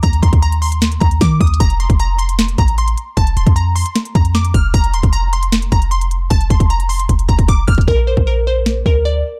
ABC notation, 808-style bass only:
X:1
M:4/4
L:1/16
Q:1/4=153
K:Fmix
V:1 name="808-style bass" clef=bass
E,,2 E,,8 E,,2 E,2 E,,2 | F,,,3 F,,,6- F,,, A,,,4 z2 | F,,,2 E,,, F,,4 z3 F,,4 F,,,2 | F,,,2 E,,, F,,,6- F,,, F,,,6 |
F,,,2 F,,,6 F,,,2 F,,,4 F,,,2 | B,,,3 B,,,6- B,,, D,,4 z2 |]